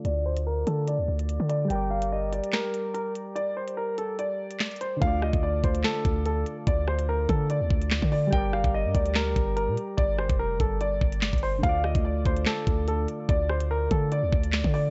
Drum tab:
HH |x-----x-----x---x-----x-x---x---|x-----x-----x-x-----x---x---x---|x-----x-----x---x-----x-xxxxx---|x-----x-----x-x-----x---x---x---|
CP |--------------------------------|----------------x---------------|------------------------x-------|----------------x---------------|
SD |--------------------------------|----------------o---------------|------------------------o-------|----r-----------o---------------|
BD |--------------------------------|--------------------------------|--------------------------------|o-----o-----o-------o-----------|

HH |x-----x-----x---x-----x-x---o---|x-----x-----x-x-----x---x---x---|x-----x-----x---x-----x-xxxxo---|x-----x-----x-x-----x---x---x---|
CP |------------------------x-------|----------------x---------------|------------------------x-------|----------------x---------------|
SD |----r-------------------o-------|----r-----------o---------------|----r-------------------o-------|----r-----------o---------------|
BD |o-----------o-------o-----o-----|o-----o-----o-------o-----------|o-----o-----o-------o-----o-----|o-----o-----o-------o-----------|

HH |x-----x-----x---x-----x-x---o---|
CP |------------------------x-------|
SD |----r-------------------o-------|
BD |o-----------o-------o-----o-----|